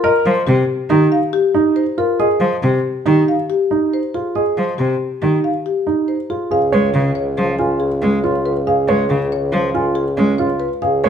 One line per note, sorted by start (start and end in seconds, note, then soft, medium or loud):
0.00 0.10 F4 medium
0.00 0.10 A#4 medium
0.00 0.32 A#4 medium
0.04 0.32 D#5 medium
0.26 0.42 F3 medium
0.47 0.63 C3 medium
0.47 0.75 G4 medium
0.90 1.06 D#3 medium
0.90 1.18 D#4 medium
0.90 1.18 G4 medium
1.12 1.40 F5 medium
1.33 1.61 G4 medium
1.54 1.83 D#4 medium
1.76 2.04 C5 medium
1.98 2.26 F4 medium
1.98 2.26 A#4 medium
2.20 2.48 G#4 medium
2.20 2.48 D#5 medium
2.40 2.57 F3 medium
2.63 2.79 C3 medium
2.63 2.91 G4 medium
3.06 3.22 D#3 medium
3.06 3.34 D#4 medium
3.06 3.34 G4 medium
3.28 3.56 F5 medium
3.50 3.77 G4 medium
3.71 3.99 D#4 medium
3.94 4.21 C5 medium
4.14 4.42 F4 medium
4.14 4.42 G#4 medium
4.35 4.63 G#4 medium
4.35 4.63 D#5 medium
4.57 4.73 F3 soft
4.78 4.95 C3 soft
4.78 5.06 G4 medium
5.22 5.38 D#3 soft
5.22 5.50 D#4 medium
5.22 5.50 G4 soft
5.44 5.72 F5 medium
5.66 5.93 G4 medium
5.87 6.15 D#4 medium
6.08 6.36 C5 soft
6.30 6.58 F4 medium
6.30 6.58 G#4 medium
6.51 10.70 C#2 medium
6.51 6.79 G#4 medium
6.51 6.79 F5 medium
6.72 6.89 G#3 medium
6.72 7.01 B4 medium
6.72 7.01 C#5 medium
6.94 7.10 C#3 medium
6.94 7.22 G#4 medium
7.15 7.44 C#5 medium
7.38 7.54 F3 medium
7.38 7.66 G#4 medium
7.59 7.87 F4 medium
7.59 7.87 G#5 medium
7.80 8.08 G#4 medium
8.02 8.18 G#3 medium
8.02 8.30 C#4 medium
8.24 8.52 F4 medium
8.24 8.52 C#5 medium
8.46 8.74 B4 medium
8.67 8.95 G#4 medium
8.67 8.95 F5 medium
8.88 9.04 G#3 soft
8.88 9.17 B4 medium
8.88 9.17 C#5 medium
9.10 9.26 C#3 medium
9.10 9.38 G#4 medium
9.32 9.60 C#5 medium
9.52 9.69 F3 medium
9.52 9.81 G#4 medium
9.74 10.03 F4 medium
9.74 10.03 G#5 medium
9.95 10.24 G#4 medium
10.17 10.34 G#3 medium
10.17 10.46 C#4 medium
10.38 10.68 F4 medium
10.38 10.67 C#5 medium
10.60 10.89 B4 medium
10.82 11.09 C#2 medium
10.82 11.09 G#4 medium
10.82 11.09 F5 medium
11.04 11.09 G#3 medium
11.04 11.09 A#4 medium
11.04 11.09 C#5 medium